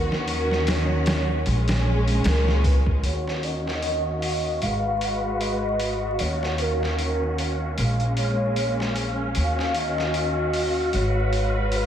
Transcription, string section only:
0.00 1.45 D#3 medium
0.00 1.45 C#4 medium
0.00 1.42 F#4 medium
1.46 3.02 A#2 medium
1.46 3.02 G#3 medium
1.46 3.02 C#4 medium
3.03 4.60 D#3 medium
3.03 4.60 C#4 medium
3.03 7.73 F#4 medium
4.61 6.18 G#3 medium
4.61 6.18 B4 medium
6.20 7.76 D#3 medium
6.20 7.76 C#4 medium
7.78 9.34 G#3 medium
7.78 9.34 A#3 medium
7.78 10.90 C#4 medium
9.35 10.91 D#3 medium
9.35 11.86 F#4 medium
10.93 11.86 G#3 medium
10.93 11.86 B4 medium

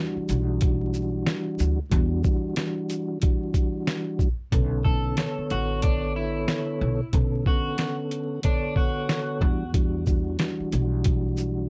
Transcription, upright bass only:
0.17 muted upright bass stroke soft
0.29 1.23 B1 medium
1.60 1.77 D2 medium
1.92 2.21 E2 loud
4.53 5.14 B1 loud
5.38 muted upright bass stroke soft
5.51 6.44 A1 medium
6.81 6.99 B1 medium
7.14 7.43 B1 loud
9.41 10.35 E2 loud
10.60 muted upright bass stroke soft
10.73 11.66 B1 medium

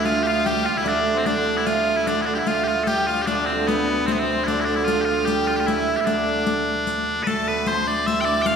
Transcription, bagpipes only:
0.05 0.23 F4 loud
0.23 0.27 G4 medium
0.27 0.46 F4 medium
0.46 0.65 G4 loud
0.65 0.77 F4 medium
0.77 0.88 E4 medium
0.88 1.18 D4 loud
1.18 1.26 C4 medium
1.26 1.57 D4 loud
1.57 1.67 E4 medium
1.67 1.97 F4 medium
1.97 2.07 E4 medium
2.07 2.22 D4 medium
2.22 2.26 E4 medium
2.26 2.35 D4 medium
2.35 2.48 E4 medium
2.35 2.38 G4 medium
2.48 2.63 F4 medium
2.63 2.84 F4 medium
2.63 2.67 G4 medium
2.84 3.07 G4 medium
2.84 2.87 A4 medium
3.07 3.22 F4 medium
3.22 3.26 G4 medium
3.26 3.46 D4 medium
3.46 3.67 C4 medium
3.67 4.06 B3 medium
4.06 4.11 C4 medium
4.11 4.19 B3 medium
4.19 4.44 C4 medium
4.44 4.61 D4 medium
4.44 4.47 E4 medium
4.61 4.65 E4 medium
4.65 4.75 D4 medium
4.75 4.85 E4 medium
4.85 5.01 F4 loud
5.01 5.25 F4 medium
5.01 5.05 G4 medium
5.25 5.47 G4 medium
5.47 5.56 F4 medium
5.56 5.67 F4 medium
5.56 5.60 G4 medium
5.67 5.96 E4 medium
5.96 6.00 G4 medium
6.00 6.06 E4 medium
6.06 7.23 D4 medium
7.23 7.48 A4 loud
7.23 7.27 B4 loud
7.48 7.68 B4 medium
7.68 7.87 C5 medium
7.87 8.06 D5 loud
8.06 8.21 E5 loud
8.21 8.25 G5 loud
8.25 8.42 D5 loud
8.42 8.46 G5 loud
8.46 8.56 F5 loud

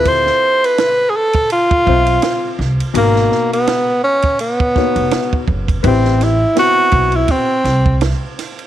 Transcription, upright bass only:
0.00 0.29 D2 medium
1.87 2.16 B1 medium
2.59 2.76 C2 medium
2.94 3.24 G#1 medium
4.96 5.09 F1 medium
5.48 5.77 F#1 medium
5.84 6.43 A1 loud
6.92 7.22 B1 medium
7.64 8.11 C2 medium

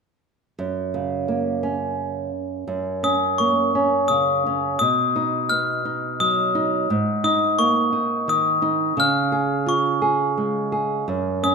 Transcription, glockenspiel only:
3.04 3.41 D#6 medium
3.38 4.12 C#6 medium
4.08 4.78 D#6 medium
4.79 5.52 D#6 medium
5.49 6.22 F6 medium
6.20 6.68 D#6 medium
7.24 7.59 D#6 medium
7.59 8.30 C#6 medium
8.29 9.00 D#6 medium
9.00 9.70 F6 medium
9.69 10.34 C#6 medium
11.44 11.55 D#6 medium

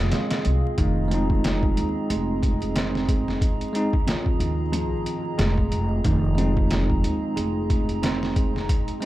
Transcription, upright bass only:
0.45 0.61 C2 loud
0.78 1.74 F1 loud
1.78 1.94 D#2 medium
2.10 3.39 F1 medium
4.40 4.92 D#2 medium
4.92 5.04 A#1 medium
5.39 5.69 F1 loud
5.72 6.02 F1 medium
6.05 7.01 F1 loud
7.04 7.20 D#2 medium
7.37 8.66 F1 medium

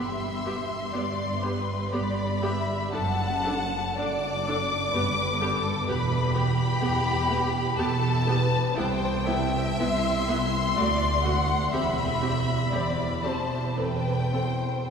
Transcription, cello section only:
0.00 0.83 G2 medium
0.94 1.81 G2 medium
1.93 2.80 G2 medium
2.92 3.86 F#2 medium
3.98 4.83 F#2 medium
4.94 5.77 G2 medium
5.88 6.71 E2 medium
6.82 7.67 E2 loud
7.78 8.65 E2 medium
8.76 9.68 C2 loud
9.80 10.67 C2 medium
10.78 11.62 D2 medium
11.72 12.60 E2 loud
12.71 13.65 E2 medium
13.78 14.78 E2 medium

